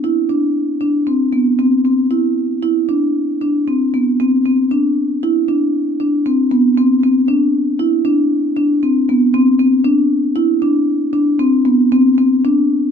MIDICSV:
0, 0, Header, 1, 2, 480
1, 0, Start_track
1, 0, Tempo, 519931
1, 33, Time_signature, 5, 2, 24, 8
1, 4834, Tempo, 513259
1, 10594, Tempo, 527704
1, 11975, End_track
2, 0, Start_track
2, 0, Title_t, "Marimba"
2, 0, Program_c, 0, 12
2, 37, Note_on_c, 0, 64, 74
2, 195, Note_off_c, 0, 64, 0
2, 270, Note_on_c, 0, 62, 67
2, 588, Note_off_c, 0, 62, 0
2, 745, Note_on_c, 0, 62, 66
2, 905, Note_off_c, 0, 62, 0
2, 987, Note_on_c, 0, 60, 66
2, 1146, Note_off_c, 0, 60, 0
2, 1224, Note_on_c, 0, 59, 66
2, 1384, Note_off_c, 0, 59, 0
2, 1468, Note_on_c, 0, 60, 68
2, 1627, Note_off_c, 0, 60, 0
2, 1708, Note_on_c, 0, 60, 64
2, 1868, Note_off_c, 0, 60, 0
2, 1945, Note_on_c, 0, 64, 68
2, 2269, Note_off_c, 0, 64, 0
2, 2426, Note_on_c, 0, 64, 76
2, 2589, Note_off_c, 0, 64, 0
2, 2666, Note_on_c, 0, 62, 68
2, 2990, Note_off_c, 0, 62, 0
2, 3151, Note_on_c, 0, 62, 66
2, 3313, Note_off_c, 0, 62, 0
2, 3394, Note_on_c, 0, 60, 64
2, 3555, Note_off_c, 0, 60, 0
2, 3636, Note_on_c, 0, 59, 63
2, 3796, Note_off_c, 0, 59, 0
2, 3879, Note_on_c, 0, 60, 73
2, 4038, Note_off_c, 0, 60, 0
2, 4115, Note_on_c, 0, 60, 61
2, 4276, Note_off_c, 0, 60, 0
2, 4350, Note_on_c, 0, 62, 68
2, 4672, Note_off_c, 0, 62, 0
2, 4830, Note_on_c, 0, 64, 81
2, 4992, Note_off_c, 0, 64, 0
2, 5065, Note_on_c, 0, 62, 67
2, 5391, Note_off_c, 0, 62, 0
2, 5548, Note_on_c, 0, 62, 69
2, 5712, Note_off_c, 0, 62, 0
2, 5791, Note_on_c, 0, 60, 71
2, 5954, Note_off_c, 0, 60, 0
2, 6029, Note_on_c, 0, 59, 70
2, 6193, Note_off_c, 0, 59, 0
2, 6275, Note_on_c, 0, 60, 77
2, 6437, Note_off_c, 0, 60, 0
2, 6515, Note_on_c, 0, 60, 65
2, 6676, Note_off_c, 0, 60, 0
2, 6747, Note_on_c, 0, 62, 73
2, 7070, Note_off_c, 0, 62, 0
2, 7226, Note_on_c, 0, 64, 80
2, 7388, Note_off_c, 0, 64, 0
2, 7464, Note_on_c, 0, 62, 74
2, 7787, Note_off_c, 0, 62, 0
2, 7946, Note_on_c, 0, 62, 70
2, 8109, Note_off_c, 0, 62, 0
2, 8194, Note_on_c, 0, 60, 69
2, 8355, Note_off_c, 0, 60, 0
2, 8439, Note_on_c, 0, 59, 73
2, 8597, Note_off_c, 0, 59, 0
2, 8672, Note_on_c, 0, 60, 81
2, 8832, Note_off_c, 0, 60, 0
2, 8910, Note_on_c, 0, 60, 72
2, 9070, Note_off_c, 0, 60, 0
2, 9145, Note_on_c, 0, 62, 76
2, 9468, Note_off_c, 0, 62, 0
2, 9623, Note_on_c, 0, 64, 82
2, 9786, Note_off_c, 0, 64, 0
2, 9868, Note_on_c, 0, 62, 70
2, 10191, Note_off_c, 0, 62, 0
2, 10345, Note_on_c, 0, 62, 73
2, 10510, Note_off_c, 0, 62, 0
2, 10592, Note_on_c, 0, 60, 76
2, 10751, Note_off_c, 0, 60, 0
2, 10827, Note_on_c, 0, 59, 71
2, 10988, Note_off_c, 0, 59, 0
2, 11070, Note_on_c, 0, 60, 86
2, 11231, Note_off_c, 0, 60, 0
2, 11309, Note_on_c, 0, 60, 66
2, 11472, Note_off_c, 0, 60, 0
2, 11551, Note_on_c, 0, 62, 76
2, 11874, Note_off_c, 0, 62, 0
2, 11975, End_track
0, 0, End_of_file